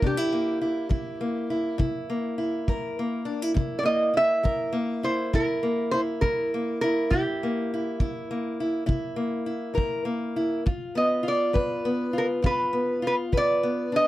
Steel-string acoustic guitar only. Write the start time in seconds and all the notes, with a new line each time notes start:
Already playing: A#3
0.03 C3 D4
0.17 E4
0.32 A#3
0.62 E4
0.89 G3 E4
1.21 A#3
1.50 E4
1.78 C3 E4
2.10 A#3
2.38 E4
2.68 G3 A#4
2.99 A#3
3.25 D4
3.42 E4
3.54 C3 E4
3.83 A#3
4.14 E4
4.43 G3 A#4
4.73 A#3
5.03 E4
5.33 C3 E4
5.63 A#3
5.93 E4
6.23 G3 E4
6.54 A#3
6.84 E4
7.12 C3 E4
7.43 A#3
7.74 E4
8.00 G3 E4
8.31 A#3
8.60 E4
8.86 C3 E4
9.16 A#3
9.46 E4
9.74 G3 A#4
10.05 A#3
10.36 E4
10.66 G2 F4
10.95 B3
11.23 F4
11.53 G3 B4
11.85 B3
12.13 F4
12.42 G2 F4
12.73 B3
13.02 F4
13.32 G3 B4
13.63 B3
13.92 D4